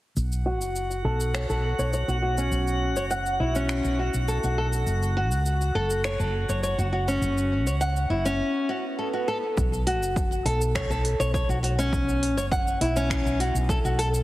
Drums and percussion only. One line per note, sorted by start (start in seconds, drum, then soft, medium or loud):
0.17 cabasa soft
0.32 cabasa soft
0.62 cabasa medium
0.76 cabasa soft
0.91 cabasa soft
1.21 cabasa medium
1.35 finger snap medium
1.35 cabasa soft
1.50 cabasa soft
1.79 cabasa medium
1.93 cabasa soft
2.09 cabasa soft
2.38 cabasa medium
2.52 cabasa medium
2.67 cabasa soft
2.97 cabasa medium
3.11 cabasa medium
3.26 cabasa soft
3.55 cabasa medium
3.69 finger snap medium
3.69 cabasa medium
3.85 cabasa soft
4.14 cabasa medium
4.28 cabasa medium
4.43 cabasa soft
4.73 cabasa medium
4.87 cabasa medium
5.03 cabasa soft
5.32 cabasa medium
5.46 cabasa medium
5.61 cabasa soft
5.91 cabasa medium
6.04 finger snap medium
6.04 cabasa medium
6.20 cabasa soft
6.49 cabasa medium
6.64 cabasa medium
6.79 cabasa soft
7.08 cabasa medium
7.22 cabasa soft
7.38 cabasa soft
7.67 cabasa medium
7.81 cabasa medium
7.96 cabasa soft
8.26 cabasa medium
9.57 kick loud
9.57 cabasa medium
9.73 cabasa soft
9.87 open hi-hat medium
10.03 cabasa medium
10.16 kick loud
10.16 cabasa medium
10.32 cabasa soft
10.46 open hi-hat medium
10.62 cabasa medium
10.75 finger snap medium
10.75 kick loud
10.75 cabasa medium
10.91 cabasa soft
11.05 open hi-hat medium
11.21 cabasa medium
11.34 kick loud
11.34 cabasa medium
11.50 cabasa soft
11.64 open hi-hat medium
11.80 cabasa medium
11.93 kick loud
11.93 cabasa medium
12.09 cabasa soft
12.23 open hi-hat medium
12.38 cabasa medium
12.52 kick loud
12.52 cabasa soft
12.68 cabasa soft
12.81 open hi-hat medium
12.97 cabasa medium
13.10 finger snap medium
13.10 kick loud
13.10 cabasa medium
13.26 cabasa soft
13.40 open hi-hat medium
13.56 cabasa medium
13.69 kick loud
13.69 cabasa medium
13.85 cabasa soft
13.99 open hi-hat medium
14.14 cabasa medium